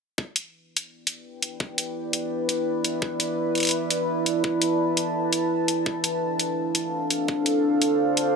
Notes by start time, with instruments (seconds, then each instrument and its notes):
0.18 ambient pad E4, kick
0.34 ambient pad B4, closed hi-hat
0.49 ambient pad D5
0.77 closed hi-hat
0.85 ambient pad G5
1.07 closed hi-hat
1.42 closed hi-hat
1.60 kick
1.78 closed hi-hat
2.13 closed hi-hat
2.49 closed hi-hat
2.85 closed hi-hat
3.02 kick
3.20 closed hi-hat
3.40 ambient pad A5
3.55 closed hi-hat
3.58 closed hi-hat
3.60 closed hi-hat
3.63 closed hi-hat
3.65 closed hi-hat
3.67 closed hi-hat
3.69 closed hi-hat
3.71 closed hi-hat
3.90 closed hi-hat
4.26 closed hi-hat
4.44 kick
4.62 closed hi-hat
4.97 closed hi-hat
5.33 closed hi-hat
5.68 closed hi-hat
5.86 ambient pad D4, kick
6.01 ambient pad A4, closed hi-hat
6.29 ambient pad C5
6.36 ambient pad F5, closed hi-hat
6.75 closed hi-hat
7.10 closed hi-hat
7.28 kick
7.46 closed hi-hat
7.82 closed hi-hat
8.17 closed hi-hat